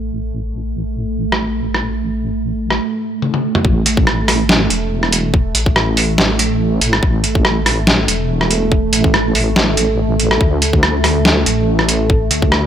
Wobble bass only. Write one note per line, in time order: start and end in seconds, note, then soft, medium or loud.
0.00 2.80 A1 medium
3.65 4.05 A1 loud
4.07 4.69 A1 loud
4.70 5.53 E1 medium
5.55 6.80 A1 loud
6.81 7.01 A1 loud
7.03 7.43 A1 loud
7.45 8.07 A1 loud
8.08 8.91 E1 loud
8.93 9.33 A1 loud
9.35 9.76 A1 loud
9.77 10.39 A1 loud
10.41 10.81 D2 loud
10.83 11.45 D2 loud
11.46 12.29 A1 loud
12.31 12.67 D2 loud